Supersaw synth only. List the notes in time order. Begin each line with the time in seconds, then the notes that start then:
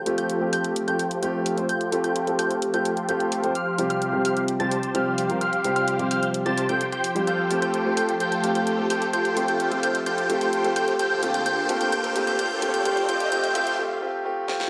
Already playing: F4 G4 A4 C5 G5
0.18 F4 G4 A4 C5 G5
0.53 F4 G4 A4 C5
0.88 F4 G4 A4 C5 G5
1.23 F4 G4 A4 C5 G5
1.69 F4 G4 A4 C5 G5
2.04 F4 G4 A4 C5 G5
2.39 F4 G4 A4 C5 G5
2.74 F4 G4 A4 C5 G5
3.09 F4 G4 A4 C5 G5
3.55 G4 C5 F5
3.90 G4 C5 F5
4.25 G4 C5 F5
4.60 G4 C5 A5
4.95 G4 C5 F5
5.41 G4 C5 F5
5.76 G4 C5 F5
6.11 G4 C5 F5
6.46 G4 C5 A5
6.69 G4 C5 G5
6.92 G4 C5 G5
7.27 F4 G4 A4 C5 G5
7.62 F4 G4 A4 C5 G5
7.97 F4 G4 A4 C5 G5
8.20 F4 G4 A4 C5 G5
8.55 F4 G4 A4 C5 G5
8.90 F4 G4 A4 C5 G5
9.13 F4 G4 A4 C5 G5
9.48 F4 G4 A4 C5 G5
9.83 F4 G4 A4 C5 G5
10.06 F4 G4 A4 C5 G5
10.41 F4 G4 A4 C5 G5
10.76 F4 G4 A4 C5 G5
10.99 F4 G4 A4 C5 G5
11.34 F4 G4 A4 C5 G5
11.46 F4 G4 A4 C5 G5
11.81 F4 G4 A4 C5 G5
11.92 F4 G4 A4 C5 G5
12.27 F4 G4 A4 C5 G5
12.39 F4 G4 A4 C5 G5
12.74 F4 G4 A4 C5 G5
12.85 F4 G4 A4 C5 G5
13.09 F4 G4 A4 C5 G5
13.32 F4 G4 A4 C5 G5
13.55 F4 G4 A4 C5 G5